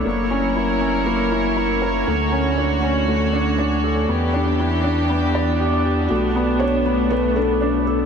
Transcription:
<<
  \new Staff \with { instrumentName = "Felt piano" } { \time 4/4 \key b \minor \tempo 4 = 119 r1 | r1 | r1 | fis'4 cis''4 b'8 a'4 r8 | }
  \new Staff \with { instrumentName = "Upright piano" } { \time 4/4 \key b \minor ais8 cis'8 e'8 cis'8 ais8 e'8 e'8 ais'8 | a8 cis'8 d'8 cis'8 a8 d'8 d'8 a'8 | b8 d'8 e'8 d'8 b8 d''8 g'8 g'8 | a8 b8 d'8 b8 a8 d'8 d'8 a'8 | }
  \new Staff \with { instrumentName = "String section" } { \time 4/4 \key b \minor << { <fis ais' cis''>1 | <d a fis'>1 | <e b g'>1 | a1 | } \\ { e'1 | r1 | d'1~ | d'1 | } >> }
  \new Staff \with { instrumentName = "Sub bass" } { \clef bass \time 4/4 \key b \minor fis,,1 | d,1 | e,1 | b,,1 | }
>>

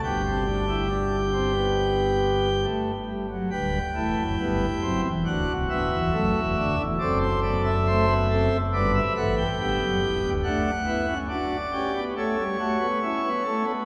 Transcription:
<<
  \new Staff \with { instrumentName = "Pipe organ" } { \time 4/4 \key g \major \tempo 4 = 69 << { g''2.~ g''8 r8 | g''2 fis''8 e''4. | d''16 c''16 d''16 e''4~ e''16 d''16 e''16 fis''16 g''4~ g''16 | fis''4 d''4 cis''2 | } \\ { g'2.~ g'8 r8 | b'8 e'4. fis'2 | a'4 c''8 a'8 b'4 g'4 | d'8 e'8 fis'8 g'8 a'8 fis'8 e'8 a'8 | } >> }
  \new Staff \with { instrumentName = "Pipe organ" } { \clef bass \time 4/4 \key g \major << { b16 c'16 d'16 e'16 d'8 c'16 b4~ b16 a8 g16 fis16 | g8 a8 b8 c'8 d'8 b8 a8 d'8 | c'8 b8 a16 b16 c'8 b8 a8 b4 | a8 b16 cis'16 d'8 cis'16 b16 a16 g16 a16 b16 cis'16 b16 a16 b16 | } \\ { <g,, g,>2.~ <g,, g,>8 r8 | <d,, d,>8 <e,, e,>16 <fis,, fis,>16 <g,, g,>8 <fis,, fis,>16 <e,, e,>16 <d,, d,>16 <c,, c,>16 <d,, d,>16 <e,, e,>16 <fis,, fis,>16 <e,, e,>16 <d,, d,>16 <e,, e,>16 | <fis,, fis,>2 <g,, g,>8 <a,, a,>8 <g,, g,>16 <fis,, fis,>16 <e,, e,>16 <d,, d,>16 | r1 | } >> }
>>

